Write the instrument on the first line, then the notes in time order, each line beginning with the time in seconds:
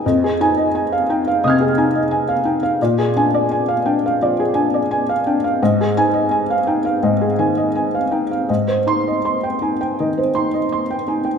felt piano
0.06 F2 D#5
0.24 G#4
0.41 D#4 G#5
0.57 D#5
0.75 G#5
0.92 F5
1.09 D#4 G5
1.28 F5
1.44 C3 D#5 D#6 F6
1.50 G#6
1.61 G#4
1.78 D#4 G#5
1.95 D#5
2.11 G#5
2.29 F5
2.45 D#4 G5
2.63 F5
2.82 A#2 D5
2.98 G#4
3.17 D4 G#5
3.34 D5
3.51 G#5
3.68 F5
3.86 D4 G5
4.06 F5
4.22 F3 D5
4.40 G#4
4.54 D4 G#5
4.74 D5
4.91 G#5
5.09 F5
5.26 D4 G5
5.44 F5
5.63 G#2 D#5
5.81 G#4
5.97 D#4 G#5
6.14 D#5
6.31 G#5
6.50 F5
6.67 D#4 G5
6.85 F5
7.03 G#2 D#5
7.21 G#4
7.39 D#3 G#5
7.57 D#5
7.75 G#5
7.95 F5
8.11 D#4 G5
8.31 F5
8.49 G#2 D#5
8.68 C5
8.87 D#4 C6
9.08 D#5
9.25 C6
9.43 G5
9.62 D#4 G#5
9.81 G5
10.00 D#3 D#5
10.18 C5
10.35 D#4 C6
10.54 D#5
10.72 C6
10.91 G5
11.08 D#4 G#5
11.25 G5